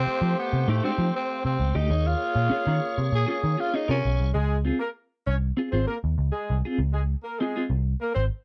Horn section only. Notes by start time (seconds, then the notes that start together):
Already playing: A3 G4 C5
1.90 A#3 G#4 C#5
4.33 G#3 G#4
4.80 A#3 A#4
5.27 C#4 C#5
5.71 C4 C5
5.87 A#3 A#4
6.32 G#3 G#4
6.93 G#3 G#4
7.24 A#3 A#4
7.39 G#3 G#4
8.01 A#3 A#4
8.15 C4 C5